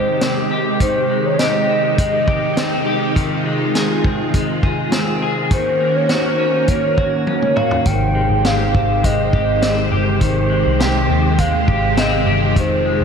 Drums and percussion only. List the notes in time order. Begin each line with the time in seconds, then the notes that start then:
0.21 snare, closed hi-hat
0.80 kick, closed hi-hat
1.39 snare, closed hi-hat
1.98 kick, closed hi-hat
2.28 kick
2.57 snare, closed hi-hat
3.16 kick, closed hi-hat
3.75 snare, closed hi-hat
4.04 kick
4.34 kick, closed hi-hat
4.63 kick
4.92 snare, closed hi-hat
5.51 kick, closed hi-hat
6.09 snare, closed hi-hat
6.68 kick, closed hi-hat
6.98 kick
7.27 high tom
7.42 mid tom
7.56 mid tom
7.71 floor tom
7.86 kick, closed hi-hat
8.45 snare, closed hi-hat
8.75 kick
9.04 kick, closed hi-hat
9.33 kick
9.62 snare, closed hi-hat
10.21 kick, closed hi-hat
10.80 snare, closed hi-hat
11.38 kick, closed hi-hat
11.68 kick
11.97 snare, closed hi-hat
12.56 kick, closed hi-hat